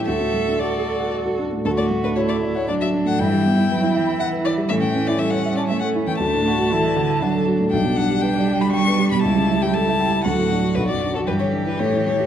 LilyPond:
<<
  \new Staff \with { instrumentName = "Violin" } { \time 3/4 \key d \major \tempo 4 = 118 e''4 d''4 r4 | a'16 d''8 b'16 cis''16 d''8 cis''16 d''16 e''8 fis''16 | g''2 fis''8 d''8 | e''16 g''8 d''16 e''16 fis''8 d''16 e''16 fis''8 g''16 |
a''2~ a''8 r8 | g''8 fis''8 g''8. b''16 cis'''8. b''16 | a''8. g''16 a''4 fis''4 | b'16 d''8 a'16 b'16 cis''8 b'16 cis''8 cis''8 | }
  \new Staff \with { instrumentName = "Grand piano" } { \time 3/4 \key d \major d,16 a,16 a16 d'16 fis'16 a'16 d''16 fis''16 d''16 fis'16 d'16 a,16 | d,16 a,16 a16 d'16 fis'16 a'16 d''16 fis''16 d''16 fis'16 d'16 a,16 | g,16 g16 b16 e'16 b'16 e'16 e''16 b''16 e''16 b'16 e'16 g16 | a,16 e16 cis'16 e'16 a'16 cis''16 e''16 a''16 e''16 a'16 e'16 e16 |
d,16 a,16 d'16 fis'16 a'16 d''16 fis''16 a''16 fis''16 a'16 fis'16 a,16 | b,,16 b,16 d'16 g'16 b'16 d''16 g''16 b''16 g''16 b'16 g'16 b,16 | cis,16 cis16 e'16 g'16 a'16 e''16 g''16 a''16 d,16 a,16 d'16 fis'16 | b,,16 fis,16 d'16 fis'16 g,16 d16 d'16 e'16 a,16 e16 a16 g'16 | }
  \new Staff \with { instrumentName = "Violin" } { \time 3/4 \key d \major fis'4 fis'4. r8 | fis'4 e'4 d'4 | e'2. | cis'2. |
d'8 fis'8 e'4 d'4 | d'2. | e'2 fis'4~ | fis'4 g'2 | }
  \new Staff \with { instrumentName = "Cello" } { \clef bass \time 3/4 \key d \major a'2~ a'8 r8 | a2 fis4 | e8 g8 fis8 e4. | e4 g4 a4~ |
a4 e8 d8 fis4 | g2.~ | g2 fis4~ | fis4 e2 | }
>>